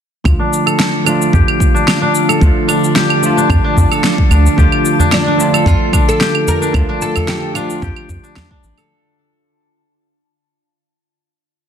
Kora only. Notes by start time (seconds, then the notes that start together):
0.39 D4
0.66 A4
1.06 D4
1.33 G4
1.74 D4
2.02 D4
2.29 A4
2.68 D4
2.95 G4
3.37 D4
3.64 D4
3.91 A4
4.31 D4
4.58 G4
5.00 D4
5.27 D4
5.54 A4
5.93 D4
6.20 G4
6.62 D4
6.89 D4
7.16 A4
7.56 D4
7.83 G4
8.24 D4
8.51 D4
8.78 A4